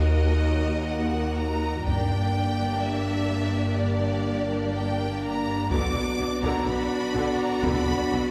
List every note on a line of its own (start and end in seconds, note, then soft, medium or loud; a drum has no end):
0.00 1.82 D#2 soft
0.00 1.83 A#3 soft
0.00 1.83 D#4 soft
0.00 1.82 F#4 soft
0.00 1.82 A#4 soft
0.00 0.91 D#5 medium
0.00 1.82 D#5 soft
0.88 1.38 F#5 medium
1.38 1.86 A#5 medium
1.86 5.71 G1 soft
1.86 5.71 G2 medium
1.86 5.67 A#3 soft
1.86 5.67 D4 soft
1.86 5.71 G4 soft
1.86 5.69 D5 soft
1.86 2.81 G5 medium
1.86 taiko medium
2.82 3.79 E5 medium
3.78 4.75 D5 medium
4.76 5.24 G5 medium
5.22 5.70 A#5 medium
5.70 5.79 B1 medium
5.70 5.78 B2 medium
5.70 5.94 D3 medium
5.70 8.31 B3 medium
5.70 8.31 D4 medium
5.70 8.31 F#4 medium
5.70 8.31 D5 medium
5.70 6.42 D6 medium
5.70 taiko medium
5.94 6.04 B1 soft
5.94 6.02 B2 soft
5.94 6.04 B3 soft
6.18 6.28 B1 soft
6.18 6.26 B2 soft
6.18 6.28 F#3 soft
6.42 6.51 B1 medium
6.42 6.50 B2 medium
6.42 6.66 D3 medium
6.42 6.67 A#5 medium
6.42 taiko soft
6.66 6.75 B1 medium
6.66 6.74 B2 soft
6.66 6.77 B3 soft
6.66 7.39 B5 medium
7.15 7.24 B1 medium
7.15 7.23 B2 medium
7.15 7.38 D3 medium
7.39 7.63 A#5 medium
7.63 7.71 B1 medium
7.63 7.71 B2 medium
7.63 7.86 D3 medium
7.63 8.31 B5 medium
7.63 taiko medium
7.88 7.96 B1 soft
7.88 7.96 B2 soft
7.88 7.96 B3 medium
8.11 8.19 B1 soft
8.11 8.20 B2 soft
8.11 8.20 F#3 medium